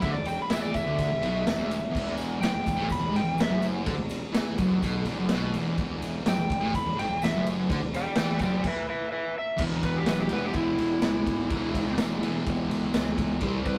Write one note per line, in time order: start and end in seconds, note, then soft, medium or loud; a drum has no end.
0.02 0.14 D2 loud
0.02 0.15 D3 loud
0.02 0.13 E5 loud
0.02 kick loud
0.02 ride loud
0.02 tambourine soft
0.14 0.37 E1 medium
0.14 0.35 E2 medium
0.14 0.26 D5 loud
0.25 0.38 G5 medium
0.25 ride medium
0.25 tambourine medium
0.42 0.52 B5 medium
0.50 0.84 E2 medium
0.50 0.86 E3 loud
0.50 0.62 E5 medium
0.50 snare loud
0.50 ride loud
0.50 tambourine loud
0.63 0.74 D5 loud
0.74 2.15 E5 loud
0.74 kick medium
0.74 ride medium
0.74 tambourine medium
0.86 1.09 D2 loud
0.86 1.10 D3 loud
0.98 kick medium
0.98 ride loud
0.98 tambourine medium
1.11 1.22 E1 medium
1.11 1.23 E2 medium
1.22 1.46 B1 loud
1.22 1.46 B2 loud
1.22 ride medium
1.44 1.58 E1 medium
1.44 1.55 E2 medium
1.44 snare loud
1.44 ride loud
1.44 tambourine loud
1.56 1.81 E1 medium
1.56 1.78 E2 loud
1.71 ride medium
1.71 tambourine medium
1.79 1.89 E2 medium
1.83 1.94 E1 medium
1.90 2.40 E2 loud
1.95 2.40 E1 medium
1.95 kick loud
1.95 crash loud
2.17 ride medium
2.17 tambourine medium
2.40 2.54 F#1 loud
2.40 2.51 F#2 medium
2.40 2.89 G5 loud
2.40 snare loud
2.40 ride loud
2.40 tambourine loud
2.51 2.66 E1 medium
2.51 2.62 E2 medium
2.63 2.77 E2 medium
2.63 tambourine medium
2.67 2.77 E1 medium
2.67 kick medium
2.67 ride medium
2.76 2.89 A1 loud
2.76 2.89 A2 loud
2.88 3.01 E1 medium
2.88 2.99 E2 medium
2.88 3.15 B5 medium
2.88 kick medium
2.88 tambourine medium
2.92 ride loud
3.00 3.13 E1 medium
3.00 3.11 E2 medium
3.11 3.24 G#1 loud
3.11 3.22 G#2 loud
3.11 tambourine soft
3.16 3.39 G5 medium
3.16 ride medium
3.23 3.36 E1 medium
3.23 3.33 E2 medium
3.34 3.49 E1 medium
3.34 3.47 E2 medium
3.34 tambourine medium
3.40 3.64 E5 loud
3.40 snare loud
3.40 ride loud
3.47 3.84 F#1 loud
3.47 3.84 F#2 loud
3.62 ride medium
3.62 tambourine medium
3.83 3.97 D2 loud
3.83 3.96 D3 loud
3.83 kick loud
3.83 ride loud
3.96 4.21 E1 medium
3.96 4.16 E2 medium
4.09 ride medium
4.09 tambourine medium
4.32 4.57 E2 medium
4.32 4.57 E3 loud
4.32 snare loud
4.32 ride loud
4.32 tambourine loud
4.57 4.81 F#1 loud
4.57 4.81 F#2 loud
4.57 kick loud
4.57 ride medium
4.57 tambourine medium
4.81 5.05 B1 loud
4.81 5.05 B2 loud
4.81 kick medium
4.81 ride loud
4.81 tambourine medium
5.05 5.17 E1 loud
5.05 5.18 E2 loud
5.05 ride medium
5.05 tambourine soft
5.18 5.29 F#1 loud
5.18 5.30 F#2 loud
5.29 5.52 B1 medium
5.29 5.54 B2 loud
5.29 snare loud
5.29 ride loud
5.29 tambourine medium
5.54 5.77 E1 loud
5.54 5.78 E2 loud
5.54 ride medium
5.54 tambourine medium
5.77 6.22 E1 loud
5.77 6.26 E2 loud
5.77 kick loud
5.77 ride medium
6.02 ride medium
6.02 tambourine medium
6.25 6.37 F#1 loud
6.25 6.38 F#2 loud
6.25 6.73 G5 loud
6.25 snare loud
6.25 ride loud
6.25 tambourine loud
6.38 6.49 E1 medium
6.38 6.48 E2 medium
6.49 6.61 E1 medium
6.49 6.62 E2 medium
6.49 kick loud
6.49 ride medium
6.61 6.73 A1 loud
6.61 6.73 A2 loud
6.74 6.85 E1 medium
6.74 6.85 E2 medium
6.74 6.98 B5 loud
6.74 kick medium
6.74 ride loud
6.74 tambourine medium
6.86 6.97 E1 medium
6.86 6.97 E2 medium
6.97 7.09 G#1 loud
6.97 7.09 G#2 loud
6.97 7.22 G5 loud
6.97 ride medium
7.10 7.20 E1 medium
7.10 7.22 E2 medium
7.21 7.32 E1 medium
7.21 7.34 E2 medium
7.21 7.46 E5 loud
7.21 snare loud
7.21 ride loud
7.21 tambourine loud
7.34 7.67 F#1 loud
7.34 7.69 F#2 loud
7.46 ride medium
7.46 tambourine medium
7.69 7.80 D2 medium
7.69 7.80 D3 medium
7.69 kick loud
7.69 ride loud
7.69 tambourine soft
7.81 8.04 E1 loud
7.81 8.00 E2 medium
7.94 8.18 D5 medium
7.94 8.18 G5 loud
7.94 ride medium
7.94 tambourine medium
8.16 8.39 E2 medium
8.16 8.41 E3 loud
8.16 8.40 D5 medium
8.16 8.41 G5 loud
8.16 snare loud
8.16 ride loud
8.16 tambourine loud
8.39 8.62 F#1 loud
8.39 8.64 F#2 loud
8.39 8.64 D5 loud
8.39 kick medium
8.39 ride medium
8.39 tambourine medium
8.44 8.66 G5 loud
8.64 8.88 B4 medium
8.64 8.88 E5 loud
8.64 kick loud
8.64 crash loud
8.90 9.11 B4 medium
8.90 9.11 E5 medium
9.12 9.34 B4 medium
9.12 9.36 E5 loud
9.38 9.61 E5 loud
9.57 9.80 E1 medium
9.57 10.34 E2 medium
9.57 10.30 B2 medium
9.57 kick loud
9.57 crash loud
9.62 10.29 E3 medium
9.82 10.04 E1 medium
9.82 9.96 B4 loud
9.82 kick medium
9.82 ride medium
9.97 10.08 G4 medium
10.06 10.28 B1 loud
10.06 10.20 B4 medium
10.06 snare loud
10.06 ride loud
10.06 tambourine loud
10.19 10.31 G4 medium
10.29 10.52 E1 medium
10.29 11.50 B2 medium
10.29 11.55 E3 medium
10.29 10.44 B4 loud
10.29 ride medium
10.35 11.48 E2 medium
10.45 10.56 G4 medium
10.53 10.76 E1 loud
10.53 11.95 E4 medium
10.53 kick loud
10.53 ride medium
10.78 11.00 E1 medium
10.78 ride medium
11.02 11.24 C#2 loud
11.02 snare loud
11.02 ride loud
11.02 tambourine medium
11.26 11.47 G#1 loud
11.26 kick medium
11.26 ride medium
11.50 11.71 E1 loud
11.50 12.20 E2 medium
11.50 12.22 B2 medium
11.50 kick loud
11.50 ride loud
11.56 12.21 E3 medium
11.74 11.95 C#2 medium
11.74 kick medium
11.74 ride medium
11.97 12.19 E1 medium
11.97 snare loud
11.97 ride loud
11.97 tambourine loud
12.20 12.42 E2 medium
12.20 13.43 E3 loud
12.20 ride medium
12.24 13.42 E2 medium
12.24 13.40 B2 loud
12.46 12.67 E1 loud
12.46 kick loud
12.46 ride loud
12.68 12.90 C#2 loud
12.68 ride medium
12.93 13.14 C#2 medium
12.93 snare loud
12.93 ride loud
12.93 tambourine loud
13.17 13.38 C#2 loud
13.17 kick loud
13.17 ride medium
13.41 13.62 C2 loud
13.41 13.78 C3 medium
13.41 13.78 G3 medium
13.41 kick loud
13.41 ride loud
13.46 13.78 C4 loud
13.65 13.78 C2 medium
13.65 13.77 B4 loud
13.65 kick medium
13.65 ride medium